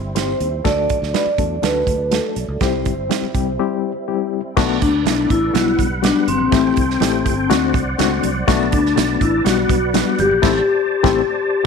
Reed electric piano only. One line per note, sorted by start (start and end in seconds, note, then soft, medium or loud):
0.15 0.47 C4 medium
0.15 0.47 E4 medium
0.15 0.47 G4 medium
0.15 0.47 C5 medium
0.64 0.96 A3 medium
0.64 0.96 D4 medium
0.64 0.96 F#4 medium
0.64 0.96 A4 medium
1.13 1.30 A3 medium
1.13 1.30 D4 medium
1.13 1.30 F#4 medium
1.13 1.30 B4 medium
1.38 1.54 A3 medium
1.38 1.54 D4 medium
1.38 1.54 F#4 medium
1.38 1.55 A4 medium
1.62 1.94 A3 medium
1.62 1.95 D4 medium
1.62 1.95 F#4 medium
1.62 1.95 A4 medium
2.11 2.43 A3 medium
2.11 2.44 D4 medium
2.11 2.44 F#4 medium
2.11 2.44 A4 medium
2.61 2.93 G3 medium
2.61 2.93 C4 medium
2.61 2.93 E4 medium
2.61 2.93 G4 loud
3.10 3.26 G3 medium
3.10 3.26 C4 medium
3.10 3.26 E4 medium
3.10 3.26 G4 medium
3.34 3.50 G3 medium
3.34 3.51 C4 medium
3.34 3.51 E4 medium
3.34 3.51 G4 medium
3.59 3.91 G3 medium
3.59 3.91 C4 medium
3.59 3.91 E4 medium
3.59 3.91 G4 medium
4.08 4.40 G3 medium
4.08 4.40 C4 medium
4.08 4.40 E4 medium
4.08 4.40 G4 medium
4.57 4.88 A3 loud
4.57 4.89 B3 loud
4.57 4.89 D4 loud
4.57 4.89 F#4 loud
5.05 5.37 A3 medium
5.05 5.37 B3 medium
5.05 5.37 D4 medium
5.05 5.38 E4 medium
5.54 5.86 G3 medium
5.54 5.86 B3 medium
5.54 5.86 D4 medium
5.54 5.86 F#4 medium
6.02 6.35 G3 medium
6.02 6.35 B3 medium
6.02 6.35 D4 medium
6.02 6.35 F#4 medium
6.51 6.84 A3 medium
6.51 6.84 C4 medium
6.51 6.84 E4 medium
6.51 6.84 G4 loud
7.01 7.33 A3 medium
7.01 7.33 C4 medium
7.01 7.33 E4 medium
7.01 7.33 G4 loud
7.50 7.82 A3 medium
7.50 7.82 C4 medium
7.50 7.82 D4 medium
7.50 7.82 F#4 loud
7.99 8.30 A3 medium
7.99 8.30 C4 medium
7.99 8.31 D4 medium
7.99 8.31 F#4 loud
8.48 8.79 A3 loud
8.48 8.79 B3 medium
8.48 8.79 D4 loud
8.48 8.79 F#4 loud
8.96 9.28 A3 medium
8.96 9.28 B3 medium
8.96 9.28 D4 medium
8.96 9.28 F#4 medium
9.45 9.77 G3 medium
9.45 9.77 B3 medium
9.45 9.77 D4 medium
9.45 9.77 F#4 medium
9.94 10.26 G3 medium
9.94 10.26 B3 medium
9.94 10.26 D4 medium
9.94 10.26 F#4 medium
10.42 10.59 A3 loud
10.42 10.59 C4 loud
10.42 10.59 E4 loud
10.42 10.59 G4 loud
11.03 11.20 A3 loud
11.03 11.20 C4 loud
11.03 11.20 E4 loud
11.03 11.20 G4 loud